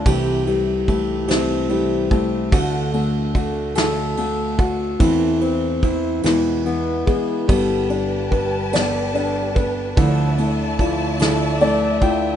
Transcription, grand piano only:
\new Staff \with { instrumentName = "Grand piano" } { \time 6/8 \key a \minor \tempo 4. = 48 c8 g8 a8 c'8 g8 a8 | d8 a8 fis'8 a'8 a8 fis'8 | e8 c'8 e'8 e8 b8 gis'8 | g8 d'8 b'8 d''8 d'8 b'8 |
d8 a8 f'8 a'8 <a d''>8 <f' g''>8 | }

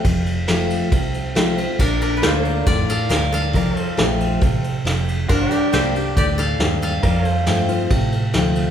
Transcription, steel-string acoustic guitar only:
\new Staff \with { instrumentName = "Steel-string acoustic guitar" } { \time 4/4 \key bes \major \tempo 4 = 138 << { r4 <f a c' f'>4 r4 <f a c' f'>8 <c' f'>8 | r4 <d bes d' f'>4 r2 | r4 <f a c' f'>4 r2 | r4 <g bes d' g'>8 <d' g'>8 r2 |
r4 <f a c' f'>8 <c' f'>8 r4 <f a c' f'>4 | } \\ { f,2 c2 | bes,2 a,4 g,4 | f,2 c4 f,4 | g,2 a,4 g,4 |
f,2 c2 | } >> }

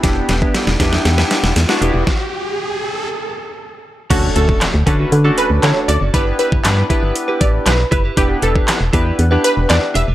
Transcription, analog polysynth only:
\new Staff \with { instrumentName = "Analog polysynth" } { \time 4/4 \key d \major \tempo 4 = 118 <b d' e' g'>8 r16 <b d' e' g'>8 r16 <b d' e' g'>4. r16 <b d' e' fis'>16 <b d' e' g'>8 | r1 | <a cis' d' fis' a'>4~ <a cis' d' fis' a'>16 r16 <a cis' d' fis' b'>8 r16 <a cis' d' fis' a'>4. r16 | <b d' e' g' b'>8. r16 <b d' e' g' b'>8 <b d' e' g' b'>4. r4 |
<b d' e' g' b'>4~ <b d' e' g' b'>16 r16 <b d' e' g' b'>8 r16 <b d' e' g' b'>4. r16 | }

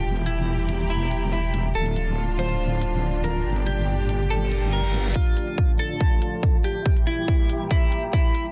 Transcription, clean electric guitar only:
\new Staff \with { instrumentName = "Clean electric guitar" } { \time 4/4 \key d \minor \tempo 4 = 141 g'16 r16 e'4. e'8. r16 e'8. r16 | a'4. c''2 bes'8~ | bes'16 r16 g'4. a'8. r16 bes'8. r16 | f'4. a'2 g'8~ |
g'16 r16 e'4. e'8. r16 e'8. r16 | }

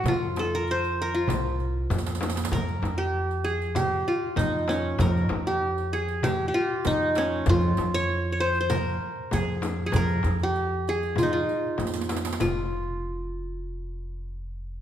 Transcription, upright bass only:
\new Staff \with { instrumentName = "Upright bass" } { \clef bass \time 4/4 \tempo 4 = 97 f,2 c,4 f,4 | f,8 f,2 r8 f,4 | f,8 f,2 r8 f,4 | f,8 f,2 r8 f,4 |
f,8 f,2 r8 f,4 | f,,1 | }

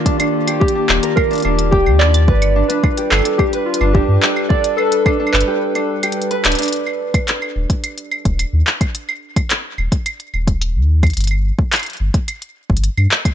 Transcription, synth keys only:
\new Staff \with { instrumentName = "Synth keys" } { \time 4/4 \key g \minor \tempo 4 = 108 r4 g'4 bes'4 g'8 d''8~ | d''8. b'8. a'8 g'8 f'8 g'4 | d''8 a'4 b'2 r8 | r1 |
r1 | r1 | }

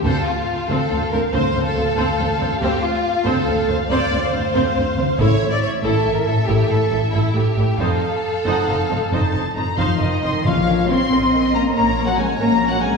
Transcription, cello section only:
\new Staff \with { instrumentName = "Cello section" } { \clef bass \time 12/8 \key f \major \tempo 4. = 93 << { r1. | r1. | r1. | r1 r8 f8 ees4 |
\key bes \minor f4 c'4. bes8 bes8. ges16 aes8 bes8. ges16 aes8 | } \\ { d,8 r4 d,8 d,8 d,8 d,8 d,8 d,8 d,8 d,8 d,8 | d,8 r4 d,8 d,8 d,8 d,8 d,8 d,8 d,8 d,8 d,8 | a,8 r4 a,8 a,8 a,8 a,8 a,8 a,8 a,8 a,8 a,8 | f,8 r4 f,8 f,8 f,8 f,8 f,8 f,8 f,8 f,8 f,8 |
r1. | } >> }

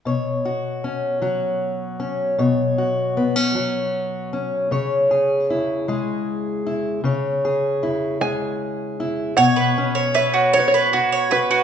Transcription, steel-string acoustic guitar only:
\new Staff \with { instrumentName = "Steel-string acoustic guitar" } { \time 6/8 \key b \dorian \tempo 4. = 52 << { cis''8 fis'8 cis'8 fis'4 cis'8 | cis''8 fis'8 b16 cis'16 fis'4 cis'8 | cis''8 gis'8 e'8 gis'4 e'8 | cis''8 gis'8 e'8 gis'4 e'8 |
r8 cis'8 cis''8 fis'8 fis'8 fis'8 | } \\ { b,4. fis4. | b,4. fis4. | cis4. gis4. | cis4. gis4. |
b,2. | } >> }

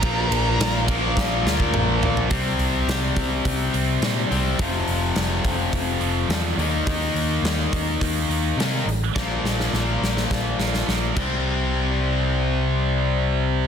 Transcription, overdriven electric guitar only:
\new Staff \with { instrumentName = "Overdriven electric guitar" } { \clef bass \time 4/4 \key bes \lydian \tempo 4 = 105 <bes, f bes>4. <bes, f bes>2~ <bes, f bes>8 | <c g c'>2.~ <c g c'>8 <c g c'>8 | <f, c f>2.~ <f, c f>8 <ees bes ees'>8~ | <ees bes ees'>2. <ees bes ees'>8 r8 |
<bes, f bes>2.~ <bes, f bes>8 <c g c'>8~ | <c g c'>1 | }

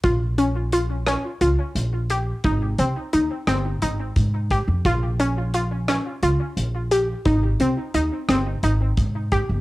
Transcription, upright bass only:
\new Staff \with { instrumentName = "Upright bass" } { \clef bass \time 7/8 \key bes \dorian \tempo 4 = 87 bes,,2 des,16 r16 bes,,4 | aes,,8 c,16 r16 ees,16 r16 g,,8 aes,,8 aes,8. f,16 | bes,,2 des,16 r16 bes,,4 | aes,,8 c,16 r16 ees,16 r16 g,,8 aes,,8 aes,8. g,,16 | }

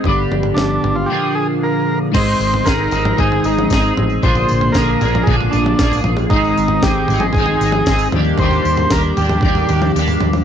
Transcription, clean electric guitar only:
\new Staff \with { instrumentName = "Clean electric guitar" } { \time 4/4 \key aes \lydian \tempo 4 = 115 <g, d g b d' g'>2 <bes, d f bes d' aes'>2 | <aes, ees aes c' ees' aes'>4 <aes c' ees' aes'>8 <aes c' ees' aes'>8 <aes, ees aes c' ees' aes'>8 <aes c' ees' aes'>8 <aes c' ees' aes'>4 | <bes, d f bes d' aes'>4 <f bes d' aes'>8 <f bes d' aes'>8 <bes, d f bes d' aes'>8 <f bes d' aes'>8 <f bes d' aes'>4 | <aes, ees aes c' ees' aes'>4 <aes c' ees' aes'>8 <aes c' ees' aes'>8 <aes, ees aes c' ees' aes'>8 <aes c' ees' aes'>8 <aes c' ees' aes'>8 <ees g bes d' g'>8 |
<ees g bes d' g'>4 <g bes d' g'>8 <bes d' g'>8 <ees g bes d' g'>8 <bes d' g'>8 <g bes d' g'>4 | }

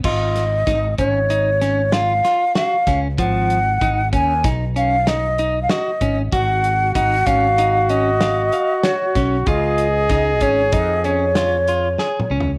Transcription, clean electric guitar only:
\new Staff \with { instrumentName = "Clean electric guitar" } { \time 5/4 \key gis \dorian \tempo 4 = 95 eis'4 dis'8 cis'8 dis'8 cis'8 eis'8 eis'8 fis'8 cis'8 | eis4 dis'8 cis'8 dis'8 cis'8 dis'8 dis'8 fis'8 cis'8 | fis'4 dis'8 cis'8 dis'8 cis'8 eis''8 eis''8 fis'8 cis'8 | eis'4 dis'8 cis'8 dis'8 cis'8 eis'8 eis'8 gis'8 cis'8 | }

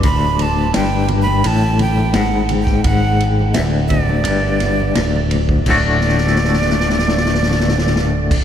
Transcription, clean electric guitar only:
\new Staff \with { instrumentName = "Clean electric guitar" } { \clef bass \time 4/4 \key c \lydian \tempo 4 = 85 d,4 g,4 a,4 gis,4 | gis,4 d,4 g,4 d,4 | <d, a, d a fis'>1 | }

